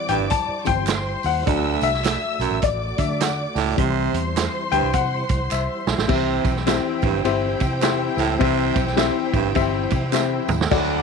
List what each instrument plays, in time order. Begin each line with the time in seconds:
Already playing: upright piano E3 G3 C4 F#5, tonewheel organ G3 E4 C5, string section D5 D6
0.08 fingered electric bass A1, baritone saxophone G2, upright piano G5, closed hi-hat, tambourine
0.20 fingered electric bass G1
0.30 upright piano A5, kick, closed hi-hat, tambourine
0.48 muted fingered electric bass stroke
0.64 fingered electric bass G1, upright piano E3 G3 C4 G5, string section C5 C6, kick, closed hi-hat, tambourine
0.87 snare, clap, closed hi-hat, tambourine
1.23 fingered electric bass D#2, upright piano F#5, open hi-hat, tambourine
1.46 baritone saxophone D2, fingered electric bass D2, upright piano F#3 A3 D4, tonewheel organ A3 F#4 D5, string section E5 E6, kick, closed hi-hat
1.81 fingered electric bass C2, upright piano E5, closed hi-hat, tambourine
1.94 snare
2.05 snare, clap, closed hi-hat, tambourine
2.39 fingered electric bass B1, baritone saxophone F#2, closed hi-hat, tambourine
2.51 fingered electric bass A1
2.62 fingered electric bass A1, upright piano D5, string section D5 D6, kick, closed hi-hat, tambourine
2.97 fingered electric bass D3, upright piano F#3 A3 D4 E5, kick, closed hi-hat, tambourine
3.21 upright piano F#5, snare, clap, closed hi-hat, tambourine
3.55 fingered electric bass C#2, baritone saxophone A2, snare, open hi-hat, tambourine
3.76 fingered electric bass C2, baritone saxophone C3, upright piano E3 G3 C4, tonewheel organ G3 E4 C5, string section C5 C6, kick, closed hi-hat
4.13 fingered electric bass E2, closed hi-hat, tambourine
4.37 snare, clap, closed hi-hat, tambourine
4.72 fingered electric bass D2, baritone saxophone G2, upright piano G5, closed hi-hat
4.82 fingered electric bass C2
4.93 fingered electric bass C3, upright piano F#5, kick, closed hi-hat, tambourine
5.29 fingered electric bass C2, kick, closed hi-hat, tambourine
5.51 fingered electric bass C2, upright piano E5, clap, tambourine
5.87 fingered electric bass B1, snare, tambourine
5.98 fingered electric bass A1, snare
6.08 fingered electric bass C2, baritone saxophone C3, tonewheel organ E3 C4 G4, upright piano E3 C4 E4 G4 C5 E5, string section E4 C5 G5, kick, crash, tambourine
6.45 fingered electric bass B1, kick, ride, tambourine
6.56 snare
6.67 upright piano C4 E4 G4 C5 E5, snare, clap, ride, tambourine
7.02 fingered electric bass A1, baritone saxophone G2, kick, ride, tambourine
7.13 fingered electric bass G1
7.24 fingered electric bass G1, upright piano C4 E4 G4 C5 E5, ride, tambourine
7.60 fingered electric bass C3, kick, ride, tambourine
7.82 upright piano C4 E4 G4 C5 E5, snare, clap, ride, tambourine
8.17 fingered electric bass C#2, baritone saxophone A2, snare, ride, tambourine
8.39 fingered electric bass C2, baritone saxophone C3, upright piano E3 C4 E4 G4 C5 E5, kick, ride, tambourine
8.76 fingered electric bass B1, kick, ride, tambourine
8.87 snare
8.96 upright piano C4 E4 G4 C5 E5, snare, clap, ride, tambourine
9.34 fingered electric bass A1, baritone saxophone G2, kick, ride, tambourine
9.44 fingered electric bass G1
9.55 fingered electric bass G1, upright piano C4 E4 G4 C5 E5, kick, ride, tambourine
9.90 fingered electric bass C3, kick, ride, tambourine
10.12 upright piano C4 E4 G4 C5 E5, snare, clap, tambourine
10.48 fingered electric bass D#2, mid tom, tambourine
10.61 snare
10.69 baritone saxophone D2, fingered electric bass D2, horn section A2 F#3 D4, upright piano D3 D4 F#4 A4 D5 F#5, string section A4 F#5 D6, kick, crash, tambourine